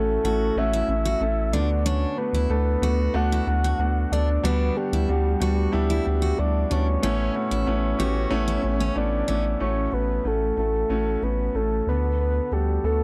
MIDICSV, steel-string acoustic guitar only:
0, 0, Header, 1, 2, 480
1, 0, Start_track
1, 0, Tempo, 646552
1, 1379, Time_signature, 4, 2, 24, 8
1, 9677, End_track
2, 0, Start_track
2, 0, Title_t, "Steel-string acoustic guitar"
2, 0, Program_c, 0, 25
2, 184, Note_on_c, 0, 66, 78
2, 410, Note_off_c, 0, 66, 0
2, 545, Note_on_c, 0, 64, 72
2, 656, Note_off_c, 0, 64, 0
2, 783, Note_on_c, 0, 66, 74
2, 895, Note_off_c, 0, 66, 0
2, 1138, Note_on_c, 0, 62, 75
2, 1252, Note_off_c, 0, 62, 0
2, 1379, Note_on_c, 0, 62, 93
2, 1607, Note_off_c, 0, 62, 0
2, 1740, Note_on_c, 0, 64, 67
2, 1853, Note_off_c, 0, 64, 0
2, 2102, Note_on_c, 0, 66, 81
2, 2328, Note_off_c, 0, 66, 0
2, 2467, Note_on_c, 0, 64, 69
2, 2577, Note_off_c, 0, 64, 0
2, 2705, Note_on_c, 0, 66, 70
2, 2815, Note_off_c, 0, 66, 0
2, 3065, Note_on_c, 0, 62, 78
2, 3175, Note_off_c, 0, 62, 0
2, 3302, Note_on_c, 0, 62, 91
2, 3528, Note_off_c, 0, 62, 0
2, 3661, Note_on_c, 0, 64, 70
2, 3773, Note_off_c, 0, 64, 0
2, 4020, Note_on_c, 0, 66, 79
2, 4246, Note_off_c, 0, 66, 0
2, 4380, Note_on_c, 0, 64, 75
2, 4492, Note_off_c, 0, 64, 0
2, 4617, Note_on_c, 0, 66, 76
2, 4731, Note_off_c, 0, 66, 0
2, 4980, Note_on_c, 0, 62, 73
2, 5092, Note_off_c, 0, 62, 0
2, 5221, Note_on_c, 0, 61, 101
2, 5447, Note_off_c, 0, 61, 0
2, 5578, Note_on_c, 0, 64, 69
2, 5691, Note_off_c, 0, 64, 0
2, 5936, Note_on_c, 0, 66, 78
2, 6165, Note_off_c, 0, 66, 0
2, 6293, Note_on_c, 0, 64, 72
2, 6409, Note_off_c, 0, 64, 0
2, 6536, Note_on_c, 0, 61, 78
2, 6650, Note_off_c, 0, 61, 0
2, 6889, Note_on_c, 0, 61, 74
2, 7006, Note_off_c, 0, 61, 0
2, 9677, End_track
0, 0, End_of_file